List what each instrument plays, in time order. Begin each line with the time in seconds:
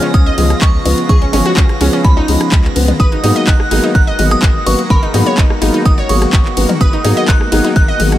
Already playing: analog synth pad C#3 F3 G#3 B3 F4, synth bell F6, synth texture A#6
0.03 synth pluck C#4, closed hi-hat
0.14 analog synth bass C#2, synth pluck C#4, synth bell D#6, kick, closed hi-hat
0.26 synth pluck D#5
0.38 analog synth bass C#2, felt piano F3 B3 C#4 G#4, open hi-hat, mid tom, ride
0.50 cross-stick, closed hi-hat
0.61 analog synth bass C#2, synth bell C#6, kick, clap, closed hi-hat
0.85 analog synth bass C#2, felt piano F3 B3 C#4 B4, open hi-hat, ride, high bongo, high conga
0.98 closed hi-hat
1.09 analog synth bass C#2, synth pluck G#4, synth bell C#6, kick, closed hi-hat, mid tom, high conga
1.22 synth pluck C#4, closed hi-hat
1.33 analog synth bass G#1, felt piano F3 B3 C#4 G#4, synth pluck C#4, open hi-hat, mid tom, ride, high bongo
1.46 synth pluck F#4, closed hi-hat
1.57 analog synth bass C#2, synth pluck C#4, kick, clap, closed hi-hat
1.69 cross-stick, closed hi-hat
1.81 analog synth bass C#2, felt piano F3 B3 C#4 G#4, synth pluck C#4, open hi-hat, ride
1.93 synth pluck C#4, closed hi-hat
2.04 analog synth bass C#2, synth pluck C#4, synth bell B5, kick, closed hi-hat
2.17 synth pluck D#4, high bongo
2.28 analog synth bass C#2, felt piano F3 B3 C#4 G#4, open hi-hat, ride
2.41 cross-stick, closed hi-hat
2.52 analog synth bass C#2, kick, clap, closed hi-hat
2.64 clap
2.76 analog synth bass C#2, felt piano F3 B3 C#4 B4, open hi-hat, ride, high conga
2.88 closed hi-hat, mid tom, high bongo
3.00 analog synth bass G#1, analog synth pad D#3 A#3 F#4, synth pluck B4, synth bell D#6, kick, closed hi-hat, high conga
3.12 synth pluck D#4, closed hi-hat
3.23 analog synth bass G#2, felt piano F#3 A#3 B3 G#4, synth pluck D#4, open hi-hat, ride, high bongo
3.36 synth pluck D#5, closed hi-hat
3.47 analog synth bass G#1, synth pluck D#4, synth bell F#6, kick, clap, closed hi-hat
3.60 cross-stick
3.71 analog synth bass G#1, felt piano F#3 A#3 B3 G#4, synth pluck D#4, open hi-hat, ride
3.84 synth pluck D#4, closed hi-hat
3.95 analog synth bass G#1, synth pluck D#4, synth bell F#6, kick, closed hi-hat
4.07 synth pluck D#5
4.19 analog synth bass G#1, felt piano F#3 A#3 B3 G#4, open hi-hat, mid tom, ride
4.31 synth bell D#6, cross-stick, closed hi-hat
4.42 analog synth bass G#1, kick, clap, closed hi-hat
4.66 analog synth bass G#1, felt piano F#3 A#3 B3 B4, synth bell C#6, open hi-hat, ride, high bongo, high conga
4.79 closed hi-hat
4.90 analog synth bass G#1, synth pluck A#4, synth bell B5, kick, closed hi-hat, mid tom, high conga
5.03 synth pluck D#4, closed hi-hat
5.14 analog synth bass G#2, felt piano F#3 A#3 B3 G#4, synth pluck D#4, open hi-hat, mid tom, ride, high bongo
5.26 synth pluck C#5, closed hi-hat
5.38 analog synth bass G#1, synth pluck D#4, kick, clap, closed hi-hat
5.50 cross-stick
5.61 analog synth bass G#1, felt piano F#3 A#3 B3 G#4, synth pluck D#4, open hi-hat, ride
5.74 synth pluck D#4, closed hi-hat
5.85 analog synth bass G#1, synth pluck D#4, synth bell D#6, kick, closed hi-hat
5.98 synth pluck C#5, high bongo
6.09 analog synth bass G#1, felt piano F#3 A#3 B3 G#4, synth bell C#6, open hi-hat, ride
6.22 cross-stick, closed hi-hat
6.33 analog synth bass G#1, kick, clap, closed hi-hat
6.45 clap
6.57 analog synth bass G#1, felt piano F#3 A#3 B3 B4, open hi-hat, ride, high conga
6.69 closed hi-hat, mid tom, high bongo
6.81 analog synth bass G#1, synth pluck B4, synth bell D#6, kick, closed hi-hat, high conga
6.93 synth pluck D#4, closed hi-hat
7.04 analog synth bass G#2, felt piano F#3 A#3 B3 G#4, synth pluck D#4, open hi-hat, ride, high bongo
7.17 synth pluck D#5, closed hi-hat
7.28 analog synth bass G#1, synth pluck D#4, synth bell F#6, kick, clap, closed hi-hat
7.41 cross-stick
7.52 analog synth bass G#1, felt piano F#3 A#3 B3 G#4, synth pluck D#4, open hi-hat, ride
7.64 synth pluck D#4, closed hi-hat
7.76 analog synth bass G#1, synth pluck D#4, synth bell F#6, kick, closed hi-hat
7.88 synth pluck D#5
8.00 analog synth bass G#1, felt piano F#3 A#3 B3 G#4, open hi-hat, mid tom, ride
8.12 cross-stick, closed hi-hat